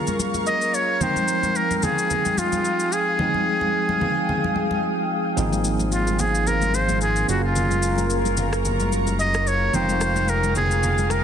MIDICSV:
0, 0, Header, 1, 6, 480
1, 0, Start_track
1, 0, Key_signature, -4, "minor"
1, 0, Tempo, 545455
1, 891, Time_signature, 4, 2, 24, 8
1, 9890, End_track
2, 0, Start_track
2, 0, Title_t, "Ambient pad"
2, 0, Program_c, 0, 92
2, 0, Note_on_c, 0, 70, 83
2, 0, Note_on_c, 0, 77, 75
2, 0, Note_on_c, 0, 82, 73
2, 0, Note_on_c, 0, 85, 90
2, 855, Note_off_c, 0, 70, 0
2, 869, Note_off_c, 0, 82, 0
2, 869, Note_off_c, 0, 85, 0
2, 890, Note_on_c, 0, 68, 79
2, 890, Note_on_c, 0, 79, 74
2, 890, Note_on_c, 0, 87, 90
2, 4695, Note_off_c, 0, 68, 0
2, 4695, Note_off_c, 0, 77, 0
2, 4695, Note_off_c, 0, 79, 0
2, 4695, Note_off_c, 0, 87, 0
2, 4731, Note_on_c, 0, 70, 81
2, 4731, Note_on_c, 0, 77, 70
2, 4731, Note_on_c, 0, 80, 73
2, 4731, Note_on_c, 0, 84, 85
2, 6394, Note_off_c, 0, 77, 0
2, 6394, Note_off_c, 0, 80, 0
2, 6394, Note_off_c, 0, 84, 0
2, 6411, Note_on_c, 0, 77, 74
2, 6411, Note_on_c, 0, 82, 74
2, 6411, Note_on_c, 0, 85, 87
2, 8535, Note_off_c, 0, 70, 0
2, 8549, Note_off_c, 0, 82, 0
2, 8549, Note_off_c, 0, 85, 0
2, 8571, Note_on_c, 0, 79, 77
2, 8571, Note_on_c, 0, 87, 88
2, 8572, Note_on_c, 0, 68, 81
2, 9890, Note_off_c, 0, 68, 0
2, 9890, Note_off_c, 0, 77, 0
2, 9890, Note_off_c, 0, 79, 0
2, 9890, Note_off_c, 0, 87, 0
2, 9890, End_track
3, 0, Start_track
3, 0, Title_t, "Muted trumpet"
3, 0, Program_c, 1, 59
3, 416, Note_on_c, 1, 75, 106
3, 655, Note_on_c, 1, 73, 102
3, 669, Note_off_c, 1, 75, 0
3, 896, Note_on_c, 1, 72, 103
3, 909, Note_off_c, 1, 73, 0
3, 1376, Note_on_c, 1, 70, 99
3, 1389, Note_off_c, 1, 72, 0
3, 1560, Note_off_c, 1, 70, 0
3, 1560, Note_on_c, 1, 70, 74
3, 1615, Note_on_c, 1, 68, 99
3, 1628, Note_off_c, 1, 70, 0
3, 2095, Note_on_c, 1, 65, 93
3, 2109, Note_off_c, 1, 68, 0
3, 2575, Note_on_c, 1, 68, 95
3, 2588, Note_off_c, 1, 65, 0
3, 4493, Note_off_c, 1, 68, 0
3, 5216, Note_on_c, 1, 65, 86
3, 5457, Note_on_c, 1, 68, 92
3, 5471, Note_off_c, 1, 65, 0
3, 5697, Note_on_c, 1, 70, 100
3, 5710, Note_off_c, 1, 68, 0
3, 5937, Note_on_c, 1, 72, 93
3, 5951, Note_off_c, 1, 70, 0
3, 6172, Note_off_c, 1, 72, 0
3, 6177, Note_on_c, 1, 68, 95
3, 6397, Note_off_c, 1, 68, 0
3, 6415, Note_on_c, 1, 66, 85
3, 6536, Note_off_c, 1, 66, 0
3, 6549, Note_on_c, 1, 65, 81
3, 7231, Note_off_c, 1, 65, 0
3, 8098, Note_on_c, 1, 75, 108
3, 8338, Note_on_c, 1, 73, 100
3, 8351, Note_off_c, 1, 75, 0
3, 8578, Note_on_c, 1, 72, 104
3, 8592, Note_off_c, 1, 73, 0
3, 9057, Note_on_c, 1, 70, 96
3, 9070, Note_off_c, 1, 72, 0
3, 9294, Note_off_c, 1, 70, 0
3, 9298, Note_on_c, 1, 68, 94
3, 9777, Note_on_c, 1, 70, 92
3, 9790, Note_off_c, 1, 68, 0
3, 9890, Note_off_c, 1, 70, 0
3, 9890, End_track
4, 0, Start_track
4, 0, Title_t, "Tine electric piano"
4, 0, Program_c, 2, 4
4, 0, Control_c, 2, 64, 127
4, 0, Note_on_c, 2, 54, 64
4, 0, Note_on_c, 2, 58, 58
4, 0, Note_on_c, 2, 61, 58
4, 0, Note_on_c, 2, 65, 56
4, 0, Note_on_c, 2, 68, 70
4, 611, Note_off_c, 2, 54, 0
4, 614, Note_off_c, 2, 58, 0
4, 617, Note_off_c, 2, 61, 0
4, 620, Note_off_c, 2, 65, 0
4, 623, Note_off_c, 2, 68, 0
4, 882, Note_on_c, 2, 53, 64
4, 888, Note_on_c, 2, 56, 57
4, 894, Note_on_c, 2, 60, 61
4, 900, Note_on_c, 2, 63, 59
4, 902, Control_c, 2, 64, 0
4, 906, Note_on_c, 2, 79, 72
4, 1051, Control_c, 2, 64, 127
4, 2771, Note_off_c, 2, 53, 0
4, 2774, Note_off_c, 2, 56, 0
4, 2777, Note_off_c, 2, 60, 0
4, 2780, Note_off_c, 2, 63, 0
4, 2783, Note_off_c, 2, 79, 0
4, 2802, Note_on_c, 2, 53, 61
4, 2808, Note_on_c, 2, 56, 60
4, 2814, Note_on_c, 2, 60, 56
4, 2820, Note_on_c, 2, 63, 59
4, 2826, Note_on_c, 2, 68, 70
4, 4691, Note_off_c, 2, 53, 0
4, 4694, Note_off_c, 2, 56, 0
4, 4697, Note_off_c, 2, 60, 0
4, 4700, Note_off_c, 2, 63, 0
4, 4703, Note_off_c, 2, 68, 0
4, 4722, Note_on_c, 2, 53, 78
4, 4728, Note_on_c, 2, 58, 69
4, 4734, Note_on_c, 2, 60, 71
4, 4740, Note_on_c, 2, 63, 68
4, 4742, Control_c, 2, 64, 0
4, 4746, Note_on_c, 2, 68, 85
4, 4882, Control_c, 2, 64, 127
4, 6373, Note_off_c, 2, 53, 0
4, 6376, Note_off_c, 2, 58, 0
4, 6379, Note_off_c, 2, 60, 0
4, 6382, Note_off_c, 2, 63, 0
4, 6385, Note_off_c, 2, 68, 0
4, 6403, Note_on_c, 2, 54, 60
4, 6408, Note_on_c, 2, 58, 56
4, 6414, Note_on_c, 2, 61, 58
4, 6420, Note_on_c, 2, 65, 60
4, 6423, Control_c, 2, 64, 0
4, 6426, Note_on_c, 2, 68, 72
4, 6592, Control_c, 2, 64, 127
4, 8291, Note_off_c, 2, 54, 0
4, 8294, Note_off_c, 2, 58, 0
4, 8297, Note_off_c, 2, 61, 0
4, 8300, Note_off_c, 2, 65, 0
4, 8303, Note_off_c, 2, 68, 0
4, 8563, Note_on_c, 2, 56, 62
4, 8569, Note_on_c, 2, 60, 58
4, 8575, Note_on_c, 2, 63, 57
4, 8581, Control_c, 2, 64, 0
4, 8581, Note_on_c, 2, 65, 59
4, 8587, Note_on_c, 2, 79, 73
4, 8735, Control_c, 2, 64, 127
4, 9890, Note_off_c, 2, 56, 0
4, 9890, Note_off_c, 2, 60, 0
4, 9890, Note_off_c, 2, 63, 0
4, 9890, Note_off_c, 2, 65, 0
4, 9890, Note_off_c, 2, 79, 0
4, 9890, End_track
5, 0, Start_track
5, 0, Title_t, "Analog synth bass"
5, 0, Program_c, 3, 38
5, 4731, Note_on_c, 3, 32, 83
5, 6377, Note_off_c, 3, 32, 0
5, 6411, Note_on_c, 3, 30, 82
5, 8535, Note_off_c, 3, 30, 0
5, 8571, Note_on_c, 3, 29, 86
5, 9890, Note_off_c, 3, 29, 0
5, 9890, End_track
6, 0, Start_track
6, 0, Title_t, "Drums"
6, 63, Note_on_c, 9, 82, 51
6, 69, Note_on_c, 9, 63, 74
6, 151, Note_off_c, 9, 82, 0
6, 157, Note_off_c, 9, 63, 0
6, 171, Note_on_c, 9, 63, 69
6, 174, Note_on_c, 9, 82, 93
6, 259, Note_off_c, 9, 63, 0
6, 262, Note_off_c, 9, 82, 0
6, 302, Note_on_c, 9, 63, 79
6, 302, Note_on_c, 9, 82, 55
6, 390, Note_off_c, 9, 63, 0
6, 390, Note_off_c, 9, 82, 0
6, 410, Note_on_c, 9, 82, 59
6, 498, Note_off_c, 9, 82, 0
6, 541, Note_on_c, 9, 82, 47
6, 629, Note_off_c, 9, 82, 0
6, 653, Note_on_c, 9, 82, 85
6, 741, Note_off_c, 9, 82, 0
6, 886, Note_on_c, 9, 64, 73
6, 891, Note_on_c, 9, 82, 81
6, 974, Note_off_c, 9, 64, 0
6, 979, Note_off_c, 9, 82, 0
6, 1021, Note_on_c, 9, 63, 68
6, 1026, Note_on_c, 9, 82, 48
6, 1109, Note_off_c, 9, 63, 0
6, 1114, Note_off_c, 9, 82, 0
6, 1127, Note_on_c, 9, 82, 96
6, 1215, Note_off_c, 9, 82, 0
6, 1258, Note_on_c, 9, 63, 63
6, 1263, Note_on_c, 9, 82, 50
6, 1346, Note_off_c, 9, 63, 0
6, 1351, Note_off_c, 9, 82, 0
6, 1368, Note_on_c, 9, 82, 63
6, 1456, Note_off_c, 9, 82, 0
6, 1502, Note_on_c, 9, 63, 68
6, 1504, Note_on_c, 9, 82, 49
6, 1590, Note_off_c, 9, 63, 0
6, 1592, Note_off_c, 9, 82, 0
6, 1606, Note_on_c, 9, 82, 85
6, 1610, Note_on_c, 9, 64, 71
6, 1694, Note_off_c, 9, 82, 0
6, 1698, Note_off_c, 9, 64, 0
6, 1746, Note_on_c, 9, 82, 60
6, 1834, Note_off_c, 9, 82, 0
6, 1852, Note_on_c, 9, 82, 80
6, 1854, Note_on_c, 9, 64, 60
6, 1940, Note_off_c, 9, 82, 0
6, 1942, Note_off_c, 9, 64, 0
6, 1982, Note_on_c, 9, 82, 52
6, 1989, Note_on_c, 9, 63, 72
6, 2070, Note_off_c, 9, 82, 0
6, 2077, Note_off_c, 9, 63, 0
6, 2090, Note_on_c, 9, 63, 67
6, 2094, Note_on_c, 9, 82, 93
6, 2178, Note_off_c, 9, 63, 0
6, 2182, Note_off_c, 9, 82, 0
6, 2221, Note_on_c, 9, 82, 57
6, 2222, Note_on_c, 9, 63, 77
6, 2309, Note_off_c, 9, 82, 0
6, 2310, Note_off_c, 9, 63, 0
6, 2330, Note_on_c, 9, 82, 58
6, 2418, Note_off_c, 9, 82, 0
6, 2461, Note_on_c, 9, 82, 47
6, 2549, Note_off_c, 9, 82, 0
6, 2573, Note_on_c, 9, 82, 83
6, 2661, Note_off_c, 9, 82, 0
6, 2806, Note_on_c, 9, 64, 74
6, 2894, Note_off_c, 9, 64, 0
6, 2941, Note_on_c, 9, 63, 65
6, 3029, Note_off_c, 9, 63, 0
6, 3178, Note_on_c, 9, 63, 65
6, 3266, Note_off_c, 9, 63, 0
6, 3422, Note_on_c, 9, 63, 65
6, 3510, Note_off_c, 9, 63, 0
6, 3531, Note_on_c, 9, 64, 71
6, 3619, Note_off_c, 9, 64, 0
6, 3775, Note_on_c, 9, 64, 62
6, 3863, Note_off_c, 9, 64, 0
6, 3910, Note_on_c, 9, 63, 74
6, 3998, Note_off_c, 9, 63, 0
6, 4011, Note_on_c, 9, 63, 69
6, 4099, Note_off_c, 9, 63, 0
6, 4143, Note_on_c, 9, 63, 76
6, 4231, Note_off_c, 9, 63, 0
6, 4727, Note_on_c, 9, 64, 72
6, 4731, Note_on_c, 9, 82, 82
6, 4815, Note_off_c, 9, 64, 0
6, 4819, Note_off_c, 9, 82, 0
6, 4862, Note_on_c, 9, 63, 67
6, 4866, Note_on_c, 9, 82, 47
6, 4950, Note_off_c, 9, 63, 0
6, 4954, Note_off_c, 9, 82, 0
6, 4967, Note_on_c, 9, 82, 96
6, 5055, Note_off_c, 9, 82, 0
6, 5099, Note_on_c, 9, 63, 66
6, 5103, Note_on_c, 9, 82, 53
6, 5187, Note_off_c, 9, 63, 0
6, 5191, Note_off_c, 9, 82, 0
6, 5209, Note_on_c, 9, 82, 67
6, 5297, Note_off_c, 9, 82, 0
6, 5343, Note_on_c, 9, 63, 65
6, 5345, Note_on_c, 9, 82, 50
6, 5431, Note_off_c, 9, 63, 0
6, 5433, Note_off_c, 9, 82, 0
6, 5447, Note_on_c, 9, 82, 85
6, 5452, Note_on_c, 9, 64, 69
6, 5535, Note_off_c, 9, 82, 0
6, 5540, Note_off_c, 9, 64, 0
6, 5587, Note_on_c, 9, 82, 58
6, 5675, Note_off_c, 9, 82, 0
6, 5693, Note_on_c, 9, 82, 80
6, 5695, Note_on_c, 9, 64, 61
6, 5781, Note_off_c, 9, 82, 0
6, 5783, Note_off_c, 9, 64, 0
6, 5823, Note_on_c, 9, 82, 51
6, 5830, Note_on_c, 9, 63, 74
6, 5911, Note_off_c, 9, 82, 0
6, 5918, Note_off_c, 9, 63, 0
6, 5931, Note_on_c, 9, 63, 65
6, 5934, Note_on_c, 9, 82, 92
6, 6019, Note_off_c, 9, 63, 0
6, 6022, Note_off_c, 9, 82, 0
6, 6062, Note_on_c, 9, 82, 56
6, 6063, Note_on_c, 9, 63, 81
6, 6150, Note_off_c, 9, 82, 0
6, 6151, Note_off_c, 9, 63, 0
6, 6170, Note_on_c, 9, 82, 58
6, 6258, Note_off_c, 9, 82, 0
6, 6301, Note_on_c, 9, 82, 46
6, 6389, Note_off_c, 9, 82, 0
6, 6414, Note_on_c, 9, 82, 85
6, 6502, Note_off_c, 9, 82, 0
6, 6647, Note_on_c, 9, 64, 71
6, 6651, Note_on_c, 9, 82, 84
6, 6735, Note_off_c, 9, 64, 0
6, 6739, Note_off_c, 9, 82, 0
6, 6782, Note_on_c, 9, 63, 67
6, 6786, Note_on_c, 9, 82, 48
6, 6870, Note_off_c, 9, 63, 0
6, 6874, Note_off_c, 9, 82, 0
6, 6887, Note_on_c, 9, 82, 100
6, 6975, Note_off_c, 9, 82, 0
6, 7019, Note_on_c, 9, 63, 68
6, 7023, Note_on_c, 9, 82, 51
6, 7107, Note_off_c, 9, 63, 0
6, 7111, Note_off_c, 9, 82, 0
6, 7128, Note_on_c, 9, 82, 66
6, 7216, Note_off_c, 9, 82, 0
6, 7262, Note_on_c, 9, 63, 65
6, 7264, Note_on_c, 9, 82, 51
6, 7350, Note_off_c, 9, 63, 0
6, 7352, Note_off_c, 9, 82, 0
6, 7366, Note_on_c, 9, 82, 87
6, 7371, Note_on_c, 9, 64, 69
6, 7454, Note_off_c, 9, 82, 0
6, 7459, Note_off_c, 9, 64, 0
6, 7503, Note_on_c, 9, 37, 90
6, 7506, Note_on_c, 9, 82, 57
6, 7591, Note_off_c, 9, 37, 0
6, 7594, Note_off_c, 9, 82, 0
6, 7613, Note_on_c, 9, 82, 81
6, 7615, Note_on_c, 9, 64, 61
6, 7701, Note_off_c, 9, 82, 0
6, 7703, Note_off_c, 9, 64, 0
6, 7743, Note_on_c, 9, 82, 50
6, 7750, Note_on_c, 9, 63, 71
6, 7831, Note_off_c, 9, 82, 0
6, 7838, Note_off_c, 9, 63, 0
6, 7851, Note_on_c, 9, 63, 66
6, 7854, Note_on_c, 9, 82, 94
6, 7939, Note_off_c, 9, 63, 0
6, 7942, Note_off_c, 9, 82, 0
6, 7982, Note_on_c, 9, 82, 57
6, 7983, Note_on_c, 9, 63, 78
6, 8070, Note_off_c, 9, 82, 0
6, 8071, Note_off_c, 9, 63, 0
6, 8090, Note_on_c, 9, 82, 56
6, 8178, Note_off_c, 9, 82, 0
6, 8221, Note_on_c, 9, 82, 47
6, 8225, Note_on_c, 9, 37, 94
6, 8309, Note_off_c, 9, 82, 0
6, 8313, Note_off_c, 9, 37, 0
6, 8333, Note_on_c, 9, 82, 84
6, 8421, Note_off_c, 9, 82, 0
6, 8566, Note_on_c, 9, 64, 71
6, 8571, Note_on_c, 9, 82, 79
6, 8654, Note_off_c, 9, 64, 0
6, 8659, Note_off_c, 9, 82, 0
6, 8702, Note_on_c, 9, 63, 65
6, 8706, Note_on_c, 9, 82, 51
6, 8790, Note_off_c, 9, 63, 0
6, 8794, Note_off_c, 9, 82, 0
6, 8807, Note_on_c, 9, 82, 100
6, 8809, Note_on_c, 9, 37, 84
6, 8895, Note_off_c, 9, 82, 0
6, 8897, Note_off_c, 9, 37, 0
6, 8939, Note_on_c, 9, 63, 65
6, 8943, Note_on_c, 9, 82, 53
6, 9027, Note_off_c, 9, 63, 0
6, 9031, Note_off_c, 9, 82, 0
6, 9049, Note_on_c, 9, 82, 65
6, 9137, Note_off_c, 9, 82, 0
6, 9182, Note_on_c, 9, 63, 66
6, 9185, Note_on_c, 9, 82, 50
6, 9270, Note_off_c, 9, 63, 0
6, 9273, Note_off_c, 9, 82, 0
6, 9287, Note_on_c, 9, 82, 89
6, 9291, Note_on_c, 9, 64, 72
6, 9375, Note_off_c, 9, 82, 0
6, 9379, Note_off_c, 9, 64, 0
6, 9427, Note_on_c, 9, 82, 58
6, 9515, Note_off_c, 9, 82, 0
6, 9533, Note_on_c, 9, 82, 78
6, 9535, Note_on_c, 9, 64, 62
6, 9621, Note_off_c, 9, 82, 0
6, 9623, Note_off_c, 9, 64, 0
6, 9663, Note_on_c, 9, 82, 51
6, 9670, Note_on_c, 9, 63, 72
6, 9751, Note_off_c, 9, 82, 0
6, 9758, Note_off_c, 9, 63, 0
6, 9768, Note_on_c, 9, 37, 82
6, 9772, Note_on_c, 9, 63, 69
6, 9774, Note_on_c, 9, 82, 91
6, 9856, Note_off_c, 9, 37, 0
6, 9860, Note_off_c, 9, 63, 0
6, 9862, Note_off_c, 9, 82, 0
6, 9890, End_track
0, 0, End_of_file